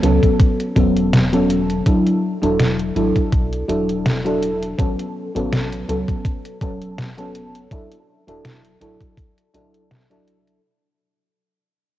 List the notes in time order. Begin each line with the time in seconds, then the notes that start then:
0.03 C#2 F#3 B3 C#4 A4, closed hi-hat
0.23 kick, closed hi-hat
0.40 kick, closed hi-hat
0.60 closed hi-hat
0.76 E1 F#3 B3 C#4 A4, kick, closed hi-hat
0.96 closed hi-hat
1.13 snare, closed hi-hat
1.32 F#3 B3 C#4 A4, closed hi-hat
1.50 closed hi-hat
1.70 closed hi-hat
1.86 F#3 D4 E4 A4, kick, closed hi-hat
2.06 closed hi-hat
2.42 E1 F#3 D4 E4 A4, closed hi-hat
2.59 snare, closed hi-hat
2.79 closed hi-hat
2.95 A1 F#3 D4 E4 A4, closed hi-hat
3.16 kick, closed hi-hat
3.32 B1, kick, closed hi-hat
3.53 closed hi-hat
3.68 E1 F#3 D4 E4 A4, closed hi-hat
3.89 closed hi-hat
4.06 snare, closed hi-hat
4.25 F#3 D4 E4 A4, closed hi-hat
4.43 closed hi-hat
4.63 closed hi-hat
4.78 A1 F#3 B3 C#4 A4, kick, closed hi-hat
4.99 closed hi-hat
5.35 A1 F#3 B3 C#4 A4, closed hi-hat
5.52 snare, closed hi-hat
5.72 closed hi-hat
5.88 C#2 F#3 B3 C#4 A4, closed hi-hat
6.08 kick, closed hi-hat
6.25 kick, closed hi-hat
6.45 closed hi-hat
6.61 E1 F#3 B3 C#4 A4, kick, closed hi-hat
6.82 closed hi-hat
6.98 snare, closed hi-hat
7.18 F#3 B3 C#4 A4, closed hi-hat
7.35 closed hi-hat
7.55 closed hi-hat
7.71 F#3 D4 E4 A4, kick, closed hi-hat
7.92 closed hi-hat
8.27 E1 F#3 D4 E4 A4, closed hi-hat
8.45 snare, closed hi-hat
8.65 closed hi-hat
8.81 A1 F#3 D4 E4 A4, closed hi-hat
9.01 kick, closed hi-hat
9.17 kick, closed hi-hat
9.38 closed hi-hat
9.54 B1 F#3 D4 E4 A4, closed hi-hat
9.74 closed hi-hat
9.91 snare, closed hi-hat
10.10 F#3 D4 E4 A4, closed hi-hat
10.28 closed hi-hat
10.47 closed hi-hat